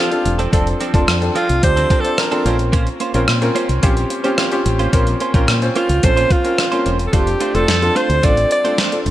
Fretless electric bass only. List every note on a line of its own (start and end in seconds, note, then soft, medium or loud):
0.25 0.46 E1 medium
0.53 0.73 F1 medium
0.94 1.04 F1 medium
1.08 1.29 F2 medium
1.50 1.60 C2 medium
1.63 1.84 D2 medium
2.45 2.87 A#1 medium
3.14 3.25 A#1 medium
3.28 3.49 A#2 medium
3.69 3.80 C2 medium
3.83 4.04 A#1 medium
4.66 4.86 A1 medium
4.93 5.14 A#1 loud
5.34 5.45 A#1 medium
5.48 5.69 A#2 medium
5.89 6.00 C#2 medium
6.04 6.24 A#1 medium
6.86 7.07 E1 medium
7.13 7.34 F1 loud
7.54 7.65 F1 medium
7.68 7.89 F2 medium
8.10 8.20 D2 medium
8.24 8.44 A1 medium
9.06 9.11 E1 medium